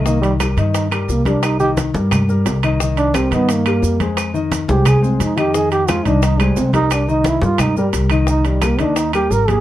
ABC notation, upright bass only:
X:1
M:4/4
L:1/8
Q:1/4=175
K:Cm
V:1 name="Upright bass" clef=bass
C,,3 G,,3 C,,2- | C,,3 G,,3 C,,2- | C,,3 G,,3 F,,2- | F,,3 C,,3 F,,2- |
F,,3 C,,3 C,,2- | C,,3 G,,3 C,,2- | C,,3 E,,3 A,,,2 |]